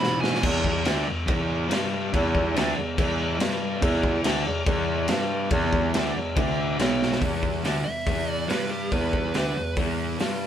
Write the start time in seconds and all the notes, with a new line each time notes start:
0.00 E2 G#2 B2 E3 B5, snare
0.21 E2 B2 E3 G#5, snare
0.35 snare
0.42 E2 E3, kick, crash
0.64 kick
0.85 D2 D3 D4, snare, crash
1.06 E2
1.26 E2 E3, kick, crash
1.69 G2 G3, snare, crash
2.13 E2 E3, kick, crash
2.35 kick
2.54 D2 D3 D4, snare, crash
2.75 E2
2.97 E2 E3, kick, crash
3.39 G2 G3, snare, crash
3.82 E2 E3, kick, crash
4.03 kick
4.23 D2 D3 D4, snare, crash
4.46 E2
4.66 E2 E3, kick, crash
5.08 G2 G3, snare, crash
5.50 E2 E3, kick, crash
5.73 kick
5.93 D2 D3 D4, snare, crash
6.15 E2
6.36 D2 D3 D4, kick, crash
6.78 B1 B2 B3, snare, crash
7.03 snare
7.12 snare
7.21 E2 E3, kick, open hi-hat
7.43 kick
7.63 D2 D3 D4, snare, open hi-hat
7.84 E2 E5
8.06 E2 E3, kick, open hi-hat
8.30 D5
8.48 G2 G3 B4, snare, open hi-hat
8.71 G4
8.91 E2 E3 B4, kick, open hi-hat
9.13 kick
9.34 D2 D3 D4, snare, open hi-hat
9.55 E2
9.76 E2 E3, kick, open hi-hat
10.18 G2 G3, snare, open hi-hat